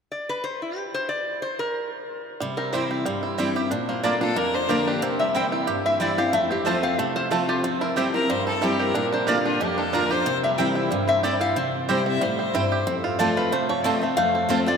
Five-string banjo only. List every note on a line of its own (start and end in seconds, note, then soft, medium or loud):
2.40 2.71 G3 medium
2.58 2.90 C4 medium
2.73 3.04 G3 medium
2.91 3.36 C4 medium
3.06 3.37 G3 medium
3.23 3.68 E4 medium
3.38 3.71 G3 medium
3.56 3.71 G4 medium
3.71 4.02 D4 medium
3.89 4.34 A#3 medium
4.03 4.20 D4 medium
4.21 4.53 D4 medium
4.36 4.83 A#3 medium
4.54 4.86 D4 medium
4.69 5.02 G4 medium
4.88 5.03 D4 medium
5.03 5.35 C4 medium
5.20 5.65 G3 medium
5.35 6.00 C4 medium
5.52 5.84 E4 medium
5.67 6.14 G4 medium
5.86 6.30 E4 medium
6.01 6.50 C4 medium
6.18 6.33 G4 medium
6.33 6.65 A3 medium
6.51 6.82 C4 medium
6.66 6.97 A3 medium
6.83 7.28 C4 medium
6.99 7.30 A3 medium
7.16 7.61 F4 medium
7.32 7.64 A3 medium
7.49 7.64 G4 medium
7.64 8.11 C4 medium
7.81 8.26 E4 medium
7.97 8.44 G4 medium
8.14 8.46 C4 medium
8.30 8.76 G3 medium
8.47 8.92 C4 medium
8.62 8.95 E4 medium
8.79 8.95 G4 soft
8.94 9.11 D4 medium
9.12 9.44 D4 medium
9.27 9.74 G4 medium
9.45 9.76 D4 medium
9.60 9.67 G#3 medium
9.67 9.93 A#3 medium
9.78 9.92 D4 medium
9.93 10.26 D4 medium
10.11 10.26 G4 medium
10.26 10.58 C4 medium
10.44 10.88 G3 medium
10.58 11.07 C4 medium
10.75 11.20 E4 medium
10.91 11.38 G3 medium
11.08 11.56 C4 medium
11.23 11.56 G4 medium
11.41 11.56 E4 medium
11.56 12.03 C4 medium
11.89 12.36 G4 medium
12.06 12.38 C4 medium
12.21 12.68 G3 medium
12.39 12.84 C4 medium
12.55 12.87 E4 medium
12.72 12.87 G4 medium
12.87 13.85 C4 medium
13.04 13.36 F4 medium
13.19 13.51 A3 medium
13.37 13.82 F4 medium
13.52 13.98 A3 medium
13.70 14.14 F3 medium
13.85 14.35 C4 medium
14.03 14.17 A3 medium
14.18 14.64 A3 medium
14.35 14.67 C4 medium
14.50 14.77 F4 medium
14.67 14.77 C4 medium